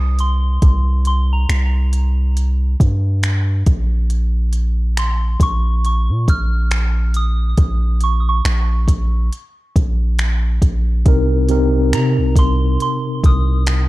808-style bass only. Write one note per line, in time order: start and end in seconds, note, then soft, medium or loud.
0.00 0.58 C2 loud
0.62 1.46 C2 loud
1.49 2.76 C2 loud
2.80 3.63 G2 loud
3.67 5.36 A#1 loud
5.40 6.11 A#1 loud
6.09 6.27 A#2 medium
6.28 7.54 A#1 loud
7.58 8.41 A#1 loud
8.45 8.87 A#1 loud
8.88 9.30 A#1 loud
9.76 10.59 A#1 loud
10.62 11.04 A#1 loud
11.06 11.94 C2 loud
11.93 12.20 C3 loud
12.18 12.35 C2 medium
12.36 12.78 C2 loud
13.24 13.88 C2 loud